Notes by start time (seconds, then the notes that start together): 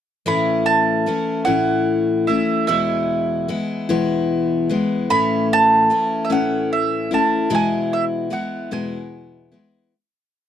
0.26 A2 E3 A3 C#4 E4 B5
0.66 A5
1.06 E3 A3 C#4 E4
1.45 A2 E3 A3 C#4 E4 F#5
2.27 A3 C#4 E4 E5
2.67 E2 B2 E3 G#3 B3 E4 E5
3.48 E3 G#3 B3 E4
3.89 E2 B2 E3 G#3 B3 E4
4.69 E3 G#3 B3 E4
5.10 A2 E3 A3 C#4 E4 B5
5.53 A5
5.90 E3 A3 C#4 E4
6.25 E5
6.30 A2 E3 A3 C#4 E4 F#5
6.73 E5
7.11 A3 C#4 E4 A5
7.50 E2 B2 E3 G#3 B3 E4
7.55 G#5
7.93 E5
8.30 E3 G#3 B3 E4 F#5
8.71 E2 B2 E3 G#3 B3 E4 G#5
9.52 E3 G#3 B3 E4